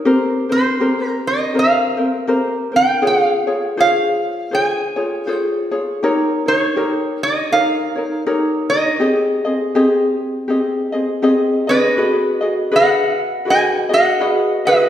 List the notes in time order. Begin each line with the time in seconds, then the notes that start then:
0.05 C4 G4 A#4 C5
0.49 C4 A#4 C5
0.80 C4 G4 A#4 C5
1.08 A#4
1.27 D#5
1.54 C4 G4 A#4 C5
1.59 F5
1.97 C4 A#4 C5
2.27 C4 G4 A#4 C5
2.72 C4 A#4 C5
2.76 G5
3.02 F4 G#4 C5 C#5
3.07 F5
3.47 F4 G#4 C#5
3.77 F4 G#4 C5 C#5 F5
4.51 F4 G#4 C5 C#5 G#5
4.96 F4 G#4 C#5
5.27 F4 G#4 C5 C#5 G5
5.71 F4 G#4 C#5
6.03 D#4 G4 A#4 C#5
6.46 D#4 A#4 C#5
6.76 D#4 G4 A#4 C#5
7.23 D#5
7.51 D#4 G4 A#4 C#5 F5
7.95 D#4 A#4 C#5
8.26 D#4 G4 A#4 C#5
8.69 D#4 A#4 C#5 D#5
9.00 C4 G4 G#4 D#5
9.45 C4 G#4 D#5
9.75 C4 G4 G#4 D#5
10.48 C4 G4 G#4 D#5
10.92 C4 G#4 D#5
11.22 C4 G4 G#4 D#5
11.67 C4 G#4 B4 D#5
11.98 F#4 G#4 B4 D#5
12.41 F#4 G#4 D#5
12.71 F#4 G#4 B4 D#5
12.76 D#5 F#5
13.45 F#4 G#4 B4 D#5
13.50 D#5 G#5
13.89 F#4 G#4 D#5
13.93 D#5 F#5
14.20 F#4 G#4 B4 D#5
14.65 F#4 G#4 B4 D#5